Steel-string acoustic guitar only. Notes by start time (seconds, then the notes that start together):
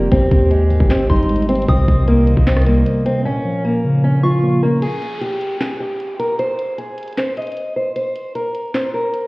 0.12 C4
0.51 G#3
0.90 C4
1.10 D#4
1.49 C4
1.68 C4
2.08 A#3
2.47 C4
2.67 A#3
3.06 C4
3.25 C#4
3.65 A#3
4.04 C#4
4.23 F4
4.63 A#3
4.82 G#4
5.21 G4
5.61 G#4
5.80 G4
6.19 A#4
6.39 C5
6.78 G#4
7.18 C5
7.37 D#5
7.76 C5
7.96 C5
8.35 A#4
8.74 C5
8.94 A#4